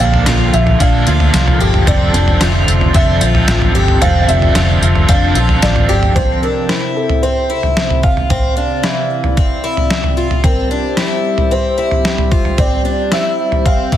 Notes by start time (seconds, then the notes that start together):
Already playing: A#2 D3 F3 A#3 D4 F4 A4
0.00 A#1 D4 F5, tambourine
0.14 floor tom
0.26 A#1 F4, snare, tambourine
0.54 A#1 E5, tambourine
0.67 floor tom
0.79 A#1 A#2 D3 F3 A#3 D4 F5, kick, tambourine
0.83 D4 A4
1.07 D2 F4, tambourine
1.20 floor tom
1.34 C2, snare, tambourine
1.48 floor tom
1.60 G1 G4
1.74 floor tom
1.86 F1 D3 F3 C4 D4 D5, kick, floor tom, tambourine
1.91 A4
2.14 F1 D4, tambourine
2.28 floor tom
2.41 F1 F4 E5, snare, tambourine
2.67 F1, tambourine
2.81 floor tom
2.93 F1 F3 C4 D4 E5, kick, tambourine
2.98 A4
3.21 A#1 F4, tambourine
3.35 floor tom
3.48 A1, snare, tambourine
3.62 floor tom
3.75 G1 G4
3.88 floor tom
4.01 F1 F3 C4 D4 A4 F5, floor tom, tambourine
4.21 F5
4.28 F1 D4 E5, tambourine
4.42 floor tom
4.54 F1 F3 C4 D4 F4 A4, snare, tambourine
4.81 F1, tambourine
4.95 floor tom
5.07 F1 F3 C4 D4 F5 A5, kick, tambourine
5.12 A4
5.35 A#1 F4, tambourine
5.49 floor tom
5.62 A1 D5, snare, tambourine
5.76 floor tom
5.88 G1 G4
6.03 floor tom
6.15 C3 C4 C5, kick, floor tom
6.42 D4 A#4
6.69 E4, snare
6.96 A4
7.09 floor tom
7.23 C4 C5
7.50 E4
7.63 floor tom
7.77 snare
7.90 floor tom
8.03 F4 F5, kick
8.17 floor tom
8.30 C4 D5, kick, floor tom
8.57 D4
8.83 E3, snare
9.24 floor tom
9.37 C4, kick
9.64 E4
9.77 floor tom
9.90 snare
10.04 floor tom
10.17 F4
10.31 floor tom
10.43 G3 C4 G4 A#4 C5, kick, floor tom
10.71 D4
10.97 E4, snare
11.38 floor tom
11.51 C4 C5
11.78 E4
11.91 floor tom
12.05 snare
12.18 floor tom
12.31 F4, kick
12.45 floor tom
12.58 C4 D5, kick, floor tom
12.85 D4
13.12 E4 E5, snare
13.52 floor tom
13.66 C4 F5, kick
13.92 E3, kick